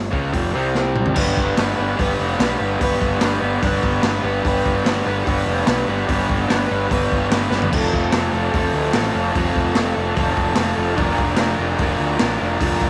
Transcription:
Already playing: G1
0.11 C#2 C#3 G#3 C#4, kick
0.33 F1 F2 C3 F3, kick, open hi-hat
0.53 C2 C3 G3 C4
0.75 snare
0.96 mid tom
1.06 floor tom
1.15 G1 G3 B3 D4, kick, crash
1.19 B4
1.37 G1, kick
1.55 G1 G3 B3 D4, snare, open hi-hat
1.60 B4
1.76 G1 B3 B4
1.82 D4
1.96 G1 G3 B3 D4, kick, open hi-hat
2.01 B4
2.20 F1
2.38 B1 G3 B3 D4, snare, open hi-hat
2.43 B4
2.59 G1 B3 B4
2.64 D4
2.79 G1 G3 B3 D4, kick, open hi-hat
2.83 B4
3.01 G1, kick
3.20 G1 G3 B3 D4, snare, open hi-hat
3.25 B4
3.40 G1 B3 B4
3.44 D4
3.62 G1 G3 B3 D4, kick, open hi-hat
3.67 B4
3.83 G1, kick
4.03 G1 G3 B3 D4, snare, open hi-hat
4.08 B4
4.23 G1 B3 B4
4.28 D4
4.43 G1 G3 B3 D4, kick, open hi-hat
4.48 B4
4.66 G1, kick
4.83 G1 G3 D4, snare, open hi-hat
4.88 B3 B4
5.05 G1 B3 B4
5.10 D4
5.24 G1 G3 B3 D4, kick, open hi-hat
5.28 B4
5.46 F1
5.65 B1 G3 B3 D4, snare, open hi-hat
5.70 B4
5.85 G1 B3 B4
5.91 D4
6.06 G1 G3 B3 D4, kick, open hi-hat
6.10 B4
6.29 G1, kick
6.47 G1 G3 B3 D4, snare
6.51 B4, open hi-hat
6.67 B3 B4
6.71 G1 D4
6.88 G1 G3 B3 D4, kick, open hi-hat
6.93 B4
7.12 G1, kick
7.29 G1 G3 B3 D4, snare, open hi-hat
7.35 B4
7.49 G1 B3 B4, snare
7.55 D4
7.62 floor tom
7.70 F1 F3 A3 C4 F4, kick, crash
7.76 A4
7.93 F1, kick
8.12 F1 A3 C4 F4, snare, open hi-hat
8.17 A4
8.31 F1 F4 A4
8.37 C4
8.52 F1 F3 A3 C4 F4, kick, open hi-hat
8.57 A4
8.74 D2
8.93 A1 A3 C4, snare, open hi-hat
8.97 F4 A4
9.12 F1 F4 A4
9.17 C4
9.32 F1 F3 A3 C4 F4, kick, open hi-hat
9.37 A4
9.56 F1, kick
9.73 F1 A3 C4 F4, snare, open hi-hat
9.77 A4
9.93 F1 F4 A4
9.98 C4
10.14 F1 F3 A3 C4 F4, kick, open hi-hat
10.19 A4
10.37 F1, kick
10.56 F1 A3 C4 F4, snare, open hi-hat
10.60 A4
10.76 F1 F4 A4
10.80 C4
10.94 F1 D3 F3 D4 F4, kick, open hi-hat
11.00 A#4
11.18 F1, kick
11.37 F1 D3 D4 F4, snare, open hi-hat
11.42 A#4
11.57 F1 F4 A#4
11.62 D4
11.78 F1 D3 F3 D4, kick, open hi-hat
11.82 F4 A#4
12.00 D2
12.18 A1 D3 D4, snare, open hi-hat
12.22 F4 A#4
12.39 F1 F4 A#4
12.43 D4
12.59 F1 D3 F3 D4, kick, open hi-hat
12.63 F4 A#4
12.81 F1, kick

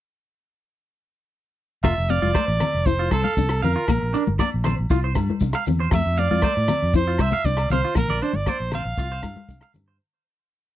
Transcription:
1.84 F1 A3 F4 E5, kick, cross-stick, low agogo, maracas
1.98 F1
2.09 C4 D5 F5, closed hi-hat, maracas
2.22 F1 F4, high conga
2.35 A3 C5, kick, cross-stick, low agogo, maracas
2.48 A1
2.60 C4, cross-stick, closed hi-hat, low conga, low agogo, maracas
2.74 F1
2.86 E4 C5, kick, maracas
2.99 F4
3.11 C2 A4 C5, kick, cross-stick, closed hi-hat, high conga, low agogo
3.24 F5, high conga
3.37 C2 D4, kick, maracas
3.49 cross-stick, low agogo
3.62 F2 C4 A#4 F5, closed hi-hat, low conga, maracas
3.76 F4
3.88 A#1 A#3, kick, cross-stick, low agogo, maracas
4.03 A#1
4.14 D4, closed hi-hat, maracas
4.27 G1, high conga
4.39 A#3 D5, kick, cross-stick, low agogo, maracas
4.54 A#1
4.64 C4 C5, cross-stick, closed hi-hat, low conga, low agogo, maracas
4.79 A#1
4.90 C2 E4 F4, kick, maracas
5.04 C5
5.15 G2, kick, cross-stick, closed hi-hat, high conga, low agogo, maracas
5.30 high conga
5.40 C2 D4, kick, maracas
5.53 F5, cross-stick, low agogo
5.66 E2 C4, closed hi-hat, low conga, maracas
5.80 C5
5.91 F2 A3 E5, muted clean electric guitar stroke, kick, cross-stick, low agogo, maracas
6.06 F2
6.17 C4 D5 F5, closed hi-hat, maracas
6.31 F2 F4, high conga
6.42 A3 C5, kick, cross-stick, low agogo, maracas
6.57 A2
6.68 C4, cross-stick, closed hi-hat, low conga, low agogo, maracas
6.83 F2
6.94 E4 C5, kick, maracas
7.08 F4
7.18 C2 C5 E5, kick, cross-stick, closed hi-hat, high conga, low agogo, maracas
7.32 F5, high conga
7.44 C2 D4 D5, kick, maracas
7.57 cross-stick, low agogo
7.70 C2 C4 C5 F5, closed hi-hat, low conga, maracas
7.85 F4
7.95 A#1 A#3 A#4, kick, cross-stick, low agogo, maracas
8.08 A#1 D5, low conga
8.21 D4 C5, closed hi-hat, maracas
8.33 G1 D5, high conga
8.46 A#3 C5 D5, kick, cross-stick, low agogo, maracas
8.60 A#1
8.71 C4 C5 F5, cross-stick, closed hi-hat, low conga, low agogo, maracas
8.85 A#1
8.98 C2 E4 F4, kick, maracas
9.12 C5
9.23 G2, kick, cross-stick, closed hi-hat, high conga, low agogo, maracas
9.36 high conga
9.49 C2 D4, kick, maracas
9.61 F5, cross-stick, low agogo
9.74 G2 C4, closed hi-hat, low conga, maracas
9.88 C5

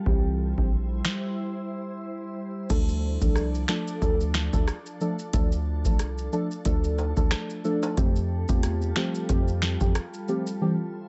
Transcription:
Already playing: G3
0.06 C2 E3 G3 C4 E4 G4 C5, kick
0.58 A#1 E3 G3 C4 G4, kick
1.05 finger snap, snare
2.70 D2 F3 A3 D4 A4, kick, crash, maracas
2.89 maracas
3.21 C2 F3 A3 D4 A4, kick, maracas
3.36 cross-stick, maracas
3.55 maracas
3.68 F3 A3 D4 A4, finger snap, snare, maracas
3.87 maracas
4.01 D2 F3 A3 D4 A4, kick, maracas
4.20 maracas
4.34 finger snap, snare, maracas
4.53 D2 F3 A3 D4 A4, kick, maracas
4.68 cross-stick, maracas
4.86 maracas
5.00 F3 A3 D4 A4, maracas
5.19 maracas
5.33 D2 F3 A3 D4 A4, kick, closed hi-hat, maracas
5.52 maracas
5.85 C2 F3 A3 D4 A4, kick, maracas
5.99 cross-stick, closed hi-hat, maracas
6.18 maracas
6.32 F3 A3 D4 A4, maracas
6.51 maracas
6.65 D2 F3 A3 D4 A4, kick, closed hi-hat, maracas
6.84 maracas
6.98 high timbale, maracas
7.17 D2 F3 A3 D4 A4, kick, maracas
7.31 finger snap, cross-stick, snare, closed hi-hat, maracas
7.50 maracas
7.64 F3 A3 D4 A4, maracas
7.83 high timbale, maracas
7.97 F2 F3 G3 A3 C4 F4 G4, kick, closed hi-hat, maracas
8.16 maracas
8.49 E2 A3 C4 F4 G4, kick, maracas
8.63 cross-stick, closed hi-hat, maracas
8.82 maracas
8.96 F3 A3 C4 G4, finger snap, snare, maracas
9.15 maracas
9.29 F2 F3 A3 C4 G4, kick, closed hi-hat, maracas
9.48 maracas
9.62 finger snap, snare, maracas
9.81 F2 F3 A3 C4 G4, kick, maracas
9.95 cross-stick, closed hi-hat, maracas
10.14 maracas
10.28 F3 A3 C4 G4, maracas
10.47 maracas
10.61 E3 G3 C4 E4 G4 C5

